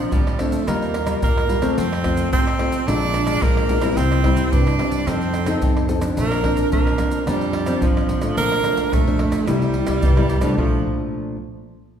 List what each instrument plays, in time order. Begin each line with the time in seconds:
Already playing: nylon-string guitar F3 C4 D4, tenor saxophone F3
0.11 upright bass D2, nylon-string guitar F3, tenor saxophone G3, pandeiro, shaker, surdo
0.27 pandeiro, tamborim, shaker
0.38 nylon-string guitar F3 C4 D4, tenor saxophone A3, pandeiro, tamborim, shaker
0.52 pandeiro, shaker
0.67 upright bass D#2, nylon-string guitar D#3 G3 A#3 F4, tenor saxophone A#3, pandeiro, tamborim, shaker, surdo
0.82 pandeiro, shaker
0.94 pandeiro, tamborim, shaker
1.07 nylon-string guitar G3 A#3 F4, pandeiro, tamborim, shaker
1.22 upright bass D#2, nylon-string guitar A#2, tenor saxophone A#3, pandeiro, shaker, surdo
1.38 pandeiro, tamborim, shaker
1.48 nylon-string guitar G3 A#3 F4, pandeiro, shaker
1.62 nylon-string guitar A3 C4 F4, pandeiro, tamborim, shaker
1.78 upright bass F2, nylon-string guitar F3, tenor saxophone C4, pandeiro, shaker, surdo
1.93 pandeiro, tamborim, shaker
2.04 nylon-string guitar A3 C4 F4, pandeiro, tamborim, shaker, surdo
2.17 pandeiro, shaker
2.32 upright bass F2, nylon-string guitar C3, tenor saxophone C4, pandeiro, shaker, surdo
2.47 pandeiro, tamborim, shaker
2.59 nylon-string guitar A3 C4 F4, pandeiro, tamborim
2.72 pandeiro, shaker
2.88 upright bass A#1, nylon-string guitar A#2 G#3 D4 F4, tenor saxophone D4, pandeiro, tamborim, shaker, surdo
3.02 pandeiro, shaker
3.14 pandeiro, tamborim
3.27 nylon-string guitar G#3 D4 F4, pandeiro, tamborim, shaker
3.42 upright bass A#1, nylon-string guitar F3, tenor saxophone A#3, pandeiro, shaker, surdo
3.57 pandeiro, tamborim, shaker
3.69 nylon-string guitar G#3 D4 F4, pandeiro, shaker
3.81 nylon-string guitar G3 C4 E4, pandeiro, tamborim, shaker
3.97 upright bass C2, nylon-string guitar C3, tenor saxophone C4, pandeiro, shaker, surdo
4.12 pandeiro, tamborim, shaker
4.24 nylon-string guitar G3 C4 E4, pandeiro, tamborim, surdo
4.37 pandeiro, shaker
4.52 upright bass C2, nylon-string guitar G2, tenor saxophone D4, pandeiro, shaker, surdo
4.67 pandeiro, tamborim, shaker
4.79 nylon-string guitar G3 C4 E4, pandeiro, tamborim
4.91 pandeiro, shaker
5.07 upright bass F2, nylon-string guitar F3 C4 D#4 A4, tenor saxophone C4, pandeiro, tamborim, shaker, surdo
5.21 pandeiro, shaker
5.34 pandeiro, tamborim, shaker
5.46 nylon-string guitar C4 D#4 A4, pandeiro, tamborim, shaker
5.62 upright bass F2, nylon-string guitar C3, pandeiro, shaker, surdo
5.77 pandeiro, tamborim, shaker
5.89 nylon-string guitar C4 D#4 A4, pandeiro, shaker
6.01 nylon-string guitar F3 C4 D4, pandeiro, tamborim, shaker
6.17 upright bass A#1, nylon-string guitar A#2, tenor saxophone A#3, pandeiro, shaker, surdo
6.32 pandeiro, tamborim, shaker
6.44 nylon-string guitar F3 C4 D4, pandeiro, tamborim, surdo
6.57 pandeiro, shaker
6.72 upright bass A#1, nylon-string guitar F3, tenor saxophone A#3, pandeiro, shaker, surdo
6.87 pandeiro, tamborim, shaker
6.98 nylon-string guitar F3 C4 D4, pandeiro, tamborim, shaker
7.11 pandeiro, shaker
7.27 upright bass F2, nylon-string guitar A#2 F3 C4 D4, tenor saxophone G3, pandeiro, tamborim, shaker, surdo
7.41 pandeiro, shaker
7.53 pandeiro, tamborim
7.66 nylon-string guitar F3 C4 D4, pandeiro, tamborim, shaker
7.82 upright bass G1, nylon-string guitar F3, tenor saxophone F3, pandeiro, shaker, surdo
7.97 pandeiro, tamborim, shaker
8.09 upright bass A1, pandeiro, shaker
8.21 nylon-string guitar F3 A3 D4, pandeiro, tamborim, shaker
8.37 upright bass A#1, nylon-string guitar A#2, tenor saxophone A#3, pandeiro, shaker, surdo
8.52 pandeiro, tamborim, shaker
8.64 nylon-string guitar F3 A3 D4, pandeiro, tamborim, shaker
8.77 pandeiro, shaker, surdo
8.93 upright bass A#1, nylon-string guitar F2, tenor saxophone A3, pandeiro, shaker, surdo
9.07 nylon-string guitar F3 A3 D4, pandeiro, shaker, surdo
9.19 pandeiro, tamborim
9.32 upright bass A#1, pandeiro, tamborim, shaker
9.47 upright bass C2, nylon-string guitar C3 G3 A#3 E4, tenor saxophone G3, pandeiro, tamborim, shaker, surdo
9.62 pandeiro, shaker, surdo
9.74 pandeiro
9.87 upright bass C2, nylon-string guitar G3 A#3 E4, pandeiro, tamborim, shaker, surdo
10.02 upright bass C2, nylon-string guitar G2, pandeiro, shaker, surdo
10.17 nylon-string guitar G3 A#3 E4, pandeiro, tamborim, shaker
10.29 pandeiro, shaker, surdo
10.41 upright bass C2, nylon-string guitar F3 A3 D4, pandeiro, tamborim, shaker
10.57 upright bass A#1, nylon-string guitar A#2 F3 A3 D4, tenor saxophone F3, surdo